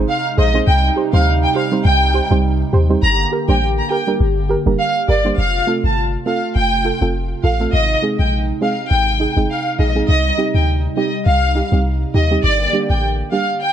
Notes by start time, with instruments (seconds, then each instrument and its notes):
Already playing: analog synth pad C3 G#3 D#4
0.09 violin section F5
0.37 808-style bass A#1, synth pluck G#4 C5, violin section D#5
0.54 synth pluck G#3 C4 D#4 G#4 C5
0.67 808-style bass C2, analog synth pad C3 G3, violin section G5
0.96 synth pluck G4 C5
1.13 808-style bass D2, synth pluck G3 C4 D#4 G4 C5, violin section F5
1.43 violin section G5
1.55 synth pluck G4 C5, violin section F5
1.72 synth pluck G3 C4 D#4 G4 C5
1.85 808-style bass C2, violin section G5
2.14 synth pluck G4 C5
2.30 808-style bass C2, synth pluck G3 C4 D#4 G4 C5
2.73 808-style bass D#2, synth pluck G4 C5
2.89 synth pluck G3 C4 D#4 G4 C5
3.03 808-style bass G1, analog synth pad D3 A#3 G4, violin section A#5
3.32 synth pluck G4 A#4
3.48 808-style bass A1, synth pluck G3 A#3 D4 G4 C5, violin section G5
3.78 violin section A#5
3.90 synth pluck G4 A#4, violin section G5
4.07 synth pluck G3 A#3 D4 G4 A#4
4.20 808-style bass G1
4.49 synth pluck G4 A#4
4.66 808-style bass F1, synth pluck G3 A#3 D4 G4 A#4
4.79 violin section F5
5.08 808-style bass G1, synth pluck G4 A#4, violin section D5
5.25 synth pluck G3 A#3 D4 G4 C5
5.38 808-style bass F1, analog synth pad C3 A3 F4, violin section F5
5.67 synth pluck A3 C4 F4 A4
5.84 808-style bass G1, violin section A5
6.26 synth pluck A3 C4 F4 A4, violin section F5
6.56 808-style bass F1, violin section G5
6.85 synth pluck F4 A4
7.01 808-style bass F1, synth pluck A3 C4 F4 A4
7.43 808-style bass A1, synth pluck F4 A4, violin section F5
7.60 synth pluck A3 C4 F4 A4
7.73 808-style bass G#1, analog synth pad G#3 D#4, violin section D#5
8.02 synth pluck G#3 C4 D#4 G#4
8.19 808-style bass A#1, violin section G5
8.61 synth pluck G#3 C4 D#4 G#4, violin section F5
8.91 808-style bass G#1, violin section G5
9.20 synth pluck D#4 G#4
9.36 808-style bass G1, synth pluck G#3 C4 D#4 G#4
9.50 violin section F5
9.79 808-style bass A#1, synth pluck D#4 G#4, violin section D#5
9.95 synth pluck G#3 C4 D#4 G#4
10.09 808-style bass C2, analog synth pad G3, violin section D#5
10.37 synth pluck G3 C4 D#4 G4
10.55 808-style bass D2, violin section G5
10.96 synth pluck G3 C4 D#4 G4, violin section D#5
11.26 808-style bass C2, violin section F5
11.55 synth pluck D#4 G4
11.72 808-style bass C2, synth pluck G3 C4 D#4 G4
12.14 808-style bass D#2, synth pluck D#4 G4, violin section D#5
12.31 synth pluck G3 C4 D#4 G4
12.44 808-style bass G1, analog synth pad D3 A#3 G4, violin section D5
12.73 synth pluck G3 A#3 D4 G4
12.90 808-style bass A1, violin section G5
13.32 synth pluck G3 A#3 D4 G4, violin section F5
13.61 violin section G5